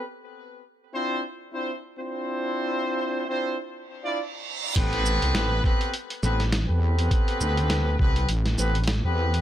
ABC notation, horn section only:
X:1
M:4/4
L:1/16
Q:"Swing 16ths" 1/4=102
K:Am
V:1 name="Horn section"
z6 [CDEFc]2 z2 [CDEFc] z2 [CDEFc]3- | [CDEFc]6 [CDEFc]2 z3 [DEFd] z4 | [B,CGAB]6 [B,CGAB]2 z2 [B,CGAB] z2 [B,CGAB]3- | [B,CGAB]6 [B,CGAB]2 z2 [B,CGAB] z2 [B,CGAB]3 |]